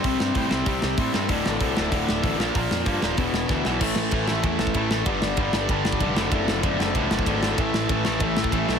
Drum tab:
CC |----------------|----------------|----------------|x---------------|
RD |----------------|----------------|----------------|----x---x---x---|
HH |o---o---o---o---|o---o---o---o---|o---o---o-------|----------------|
SD |--o---o---o---o-|--o---o---o---o-|--o---o---o-o-o-|--o---o---o---o-|
BD |o---o---o---o---|o---o---o---o---|o---o---o---o---|o---o---o--oo---|

CC |----------------|----------------|----------------|
RD |x---x---x---x---|x---x---x---x---|x---x---x---x---|
HH |----------------|----------------|----------------|
SD |--o---o---o---o-|--o---o---o---o-|--o---o---o---o-|
BD |o---o---o--oo---|o---o---o--oo---|o---o---o--oo---|